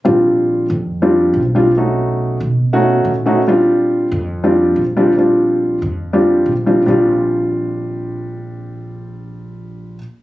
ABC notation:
X:1
M:4/4
L:1/16
Q:1/4=141
K:Bb
V:1 name="Grand piano"
[G,CDF]6 z3 [G,CDF]3 z2 [G,CDF] z | [A,^C^D^F]6 z3 [A,CDF]3 z2 [A,CDF] z | [G,CDF]6 z3 [G,CDF]3 z2 [G,CDF] z | [G,CDF]6 z3 [G,CDF]3 z2 [G,CDF] z |
[G,CDF]16- | [G,CDF]16 |]
V:2 name="Upright bass" clef=bass
B,,,6 F,,6 _C,,4- | _C,,6 =B,,6 _B,,4- | B,,6 F,,6 B,,,4- | B,,,6 F,,6 B,,,4 |
B,,,16- | B,,,16 |]